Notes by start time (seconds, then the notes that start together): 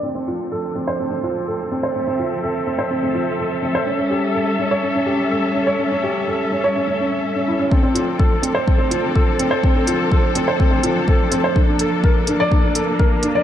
Already playing: F3
0.03 C4 D4 A4
0.15 C4
0.28 F4
0.52 A4
0.75 C4
0.88 C5
0.99 C4
1.11 C4
1.23 F4
1.47 A4
1.72 C4
1.83 C5
1.95 C4 E5
2.07 C4
2.19 F4
2.43 A4
2.67 C4
2.79 C5
2.91 C4
3.03 C4
3.14 F4
3.39 A4
3.63 C4
3.75 C5
3.87 G3 C#4
3.98 C#4
4.10 G4
4.35 A4
4.59 C#4
4.71 C#5
4.83 C#4
4.95 C#4
5.06 G4
5.31 A4
5.55 C#4
5.67 C#5
5.79 C#4
5.92 C#4
6.03 G4
6.27 A4
6.52 C#4
6.64 C#5
6.76 C#4
6.88 C#4
7.00 C#4
7.36 C#4
7.48 E4
7.59 C#4
7.71 F3 C4 D4 A4, kick
7.83 C4
7.95 F4, closed hi-hat
8.19 A4, kick
8.42 C4, closed hi-hat
8.55 C5
8.67 C4, kick
8.78 C4
8.91 F4, closed hi-hat
9.15 A4, kick
9.39 C4, closed hi-hat
9.51 C5
9.63 C4, kick
9.75 C4
9.87 F4, closed hi-hat
10.11 A4, kick
10.35 C4, closed hi-hat
10.48 C5
10.60 C4, kick
10.71 C4
10.83 F4, closed hi-hat
11.08 A4, kick
11.32 C4, closed hi-hat
11.44 C5
11.56 A#3 D4, kick
11.68 D4
11.79 A4, closed hi-hat
12.04 A#4, kick
12.27 D4, closed hi-hat
12.40 D5
12.52 D4, kick
12.63 D4
12.75 A4, closed hi-hat
12.99 A#4, kick
13.23 D4, closed hi-hat
13.35 D5